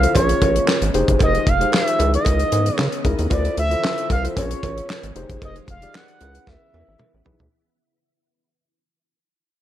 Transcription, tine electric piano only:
0.03 E4 F4 A4 C5
0.15 C#4 F4 G#4 C#5
0.94 D#4 G4 G#4 C5
1.60 D#4 G4 G#4 C5
1.98 D#4 E4 G#4 B4
3.04 D#4 E4 G#4 A#4
3.30 E4 F4 A4 C5
3.71 E4 F4 A4 C5
4.24 E4 F4 A4 C5
4.36 C#4 F4 G#4 C#5
5.16 D#4 G4 G#4 C5
5.82 D#4 G4 G#4 D5
6.21 C#4 E4 G#4 B4
7.25 D#4 E4 G#4 B4

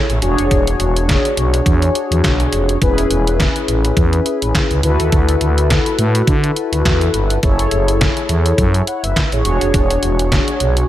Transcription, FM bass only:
0.09 A1
0.22 E1
0.38 F1
0.51 E1
0.79 E1
1.37 B1
1.66 E2
2.11 E2
2.24 B1
2.52 F1
2.82 E1
3.10 E1
3.68 A1
3.97 E2
4.42 A1
4.71 C#2
4.84 D2
5.00 D#2
5.12 D2
5.41 D2
5.98 A2
6.27 D3
6.72 D2
6.85 E2
7.14 G1
7.43 F#1
7.72 F#1
8.29 E2
8.58 F#2
9.03 F#1
9.32 A1
9.45 E1
9.61 F1
9.74 E1
10.03 E1
10.61 B1

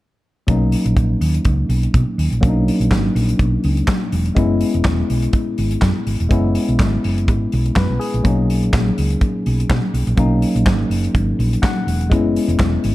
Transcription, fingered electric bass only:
0.49 B1
0.85 A#1
0.97 A#1
1.21 D#2
1.46 C#2
1.69 B1
1.95 B2
2.18 D#2
2.32 A#1
2.44 B1
2.80 A#1
2.92 G#1
3.15 A#1
3.40 B1
3.64 C#2
4.13 E1
4.37 F#1
4.74 E1
4.85 E1
5.10 B1
5.58 G#1
5.82 F#2
6.07 G#1
6.20 E1
6.31 F#1
6.69 B1
6.80 G#1
7.05 F#1
7.29 G#1
7.53 B1
7.77 F#2
7.89 B1
8.14 A#1
8.25 B1
8.62 A#1
8.73 A#1
8.98 C#2
9.46 B1
9.70 B2
9.94 B1
10.07 A#1
10.18 B1
10.55 A#1
10.67 G#1
10.90 F#1
11.15 G#1
11.39 A#1
11.87 E1
12.12 F#1
12.48 E1
12.60 E1
12.85 G#1

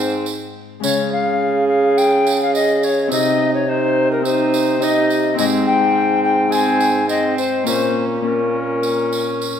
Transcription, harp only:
Already playing: G#2 G#3 C4 D#4
0.80 C#3 G#3 C#4 F4
3.08 C3 C4 D#4 G4
4.21 C4 D#4 G4
4.78 C4 D#4 G4
5.35 G#2 C4 D#4 G#4
6.48 C4 D#4 G#4
7.64 A#2 A#3 C#4 F4
8.21 A#3 C#4 F4

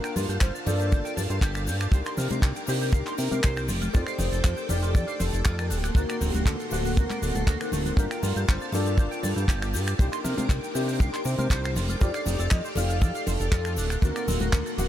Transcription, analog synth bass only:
0.16 G2
0.29 G2
0.41 G1
0.67 G2
0.92 G1
1.17 G2
1.30 G2
1.41 G1
1.67 G2
1.92 C2
2.18 C3
2.31 C3
2.42 C2
2.68 C3
2.92 C2
3.18 C3
3.31 C3
3.44 C2
3.69 F1
3.94 F2
4.19 F1
4.32 F1
4.44 F2
4.70 F1
4.95 F2
5.20 F1
5.33 F1
5.46 F2
5.71 D1
5.95 D2
6.21 D1
6.34 D1
6.46 D2
6.71 D1
6.97 D2
7.22 D1
7.35 D1
7.47 D2
7.72 D1
7.97 G1
8.23 G2
8.36 G2
8.48 G1
8.73 G2
8.98 G1
9.23 G2
9.37 G2
9.48 G1
9.74 G2
9.99 C2
10.24 C3
10.38 C3
10.49 C2
10.75 C3
11.00 C2
11.25 C3
11.38 C3
11.50 C2
11.76 F1
12.01 F2
12.26 F1
12.39 F1
12.51 F2
12.76 F1
13.02 F2
13.27 F1
13.40 F1
13.52 F2
13.77 D1
14.02 D2
14.28 D1
14.41 D1
14.53 D2
14.78 D1

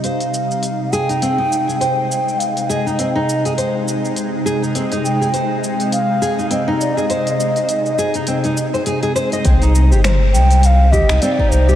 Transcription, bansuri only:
0.04 F5
0.92 G5
1.80 G5
2.10 G5
2.39 F5
2.70 D#5
5.04 G5
5.92 F5
6.51 D#5
6.80 D5
6.97 D#5
10.33 G5
10.62 F5 G5
10.92 D#5
11.21 D5
11.50 C5

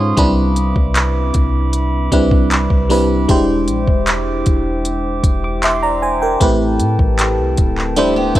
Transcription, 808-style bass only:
Already playing: G#2
0.17 C2
0.76 C2
1.35 C2
2.12 C2
2.70 C2
3.29 E1
3.67 A#1
3.87 E1
4.47 E1
5.23 E1
6.41 A1
6.80 A2
6.99 A1
7.38 C2
7.58 D1
8.35 D1

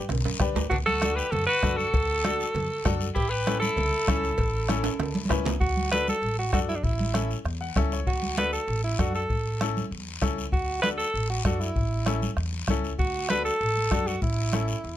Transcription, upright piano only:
0.41 D4 G4 B4
1.02 D4 F#4 A4
1.63 D4 F#4 A4
2.24 D4 F#4 A4
2.85 D4 F#4 A4
3.47 C#4 E4 A4
4.08 C#4 E4 A4
4.69 C#4 E4 A4
5.29 C#4 E4 B4
5.93 D4 F#4 A4
6.53 D4 F#4 A4
7.14 C#4 E4 A4
7.61 F#5
7.77 C#4 E4 A4 E5
7.93 C#5
8.38 D4 F#4 A4
8.99 D4 F#4 A4
9.62 C#4 E4 A4
10.21 C#4 E4 A4
10.83 D4 F#4 A4
11.45 D4 F#4 A4
12.06 C#4 E4 A4
12.70 C#4 E4 A4
13.30 D4 F#4 A4
13.91 D4 F#4 A4
14.53 C#4 E4 A4

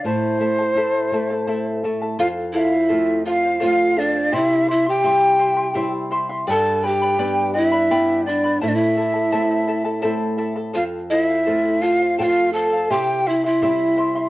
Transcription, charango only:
0.05 E4 A4 C5 E5 A5
0.40 E4 A4 E5 A5
0.59 E4 A4 A5
0.76 E4 A4 C5 E5 A5
1.13 E4 A4 E5 A5
1.30 E4 A4 A5
1.47 E4 A4 C5 E5 A5
1.84 E4 A4 E5 A5
2.02 E4 A4 A5
2.19 A4 C5 F5
2.54 A4 C5 F5
2.72 C5 F5
2.89 A4 C5
3.25 A4 C5 F5
3.43 C5 F5
3.60 A4 C5 F5
3.96 A4 C5 F5
4.14 C5 F5
4.32 E4 G4 C5 E5 C6
4.67 E4 C5 E5 C6
4.86 E4 E5 C6
5.04 E4 G4 C5 E5 C6
5.39 E4 C5 E5 C6
5.57 E4 E5 C6
5.74 E4 G4 C5 E5 C6
6.11 E4 C5 E5 C6
6.29 E4 E5 C6
6.47 G4 B4 D5 G5 B5
6.82 B4 D5 G5 B5
7.02 B4 D5 B5
7.18 G4 B4 D5 G5 B5
7.54 B4 D5 G5 B5
7.72 B4 D5 B5
7.91 G4 B4 D5 G5 B5
8.26 B4 D5 G5 B5
8.44 B4 D5 B5
8.61 E4 A4 C5 E5 A5
8.97 E4 A4 E5 A5
9.14 E4 A4 A5
9.32 E4 A4 C5 E5 A5
9.67 E4 A4 E5 A5
9.85 E4 A4 A5
10.02 E4 A4 C5 E5 A5
10.38 E4 A4 E5 A5
10.56 E4 A4 A5
10.73 A4 C5 F5
11.11 A4 C5 F5
11.29 C5 F5
11.46 A4 C5
11.81 A4 C5 F5
12.00 C5 F5
12.18 A4 C5 F5
12.54 A4 C5 F5
12.73 C5 F5
12.90 E4 G4 C5 E5 C6
13.26 E4 C5 E5 C6
13.43 E4 E5 C6
13.62 E4 G4 C5 E5 C6
13.97 E4 C5 E5 C6
14.15 E4 E5 C6

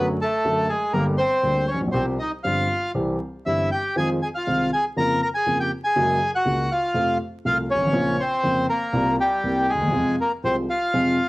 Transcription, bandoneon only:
0.21 A3 A4
0.69 G#3 G#4
0.93 A#3 A#4
1.18 C4 C5
1.68 C#4 C#5
1.92 C4 C5
2.19 D#4 D#5
2.44 F4 F5
3.46 E4 E5
3.71 G4 G5
3.97 G#4 G#5
4.22 G#4 G#5
4.35 F4 F5
4.73 G#4 G#5
4.98 A#4 A#5
5.23 A#4 A#5
5.35 G#4 G#5
5.60 G4 G5
5.84 G#4 G#5
6.35 F#4 F#5
6.72 F4 F5
7.46 F4 F5
7.71 C#4 C#5
8.20 C4 C5
8.69 A#3 A#4
9.20 G3 G4
9.69 G#3 G#4
10.21 A#3 A#4
10.44 C4 C5
10.70 F4 F5

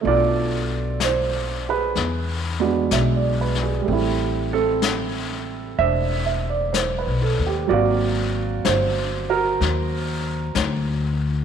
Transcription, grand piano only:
0.01 B2 A3 D4
0.06 F4 A4 D5
1.04 C5
1.69 G#4 B4
2.60 G#3 B3 D4 F#4
2.93 E5
3.16 D5
3.41 B4
3.63 G#4
3.82 G3 A3
3.89 C4 E4
4.53 C4 A4
5.79 D4 C5 E5
6.26 E5
6.50 D5
6.73 C5
6.98 B4
7.22 A4
7.47 G4
7.67 F#3 A#3 C4 F#4 D5
7.73 F5
8.65 C5
9.30 F#4 A#4

